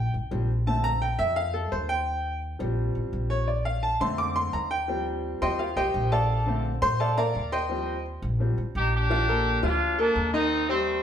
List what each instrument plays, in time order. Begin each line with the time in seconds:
Already playing: upright bass A#1, grand piano G5
0.14 upright bass A1
0.31 upright bass A#1, grand piano F3 G3 C4
0.67 grand piano D3 A3 C4 A5
0.84 grand piano A#5
1.02 grand piano G5
1.19 upright bass F2, grand piano E5
1.36 grand piano F5
1.54 grand piano A4
1.72 upright bass D#2, grand piano C5
1.89 grand piano G5
2.59 upright bass A#1, grand piano F3 G3 C4
2.95 upright bass A1
3.13 upright bass A#1
3.30 grand piano C#5
3.48 grand piano D5
3.65 grand piano F5
3.83 grand piano A5
4.00 upright bass F2, grand piano D3 A3 C4 C6
4.18 grand piano D6
4.36 grand piano C6
4.53 upright bass D#2, grand piano A#5
4.71 grand piano G5
4.88 grand piano F3 G3 C4
5.41 upright bass D#2, grand piano F3 G3 C4 C5 D#5 G5 C6
5.59 grand piano F4 F5
5.76 upright bass C2, grand piano G4 C5 D#5 G5
5.94 upright bass A#1
6.12 grand piano A4 D5 F5 A5
6.46 grand piano D3 A3 C4
6.82 upright bass A#2, grand piano C5 C6
7.00 grand piano A4 D5 F5 A5
7.18 grand piano A#4 D5 F5 A#5
7.35 upright bass D#2
7.52 grand piano C5 D#5 G5 C6
7.69 grand piano F3 G3 C4
8.22 upright bass A#1
8.40 grand piano F3 G3 C4
8.58 upright bass A1
8.75 upright bass A#1, trumpet section D#4 G4
8.94 trumpet section D4 G4
9.10 grand piano F3 F4 F5
9.28 grand piano A#3 A4 A#4
9.63 upright bass D2, grand piano F3 F4 F5, trumpet section D4 F4
9.99 grand piano A#3 A4 A#4, trumpet section A#3 D4
10.16 upright bass D#2
10.34 grand piano D#3 D#4 D#5, trumpet section C4 D#4
10.69 grand piano G3 G4 C5, trumpet section A3 C4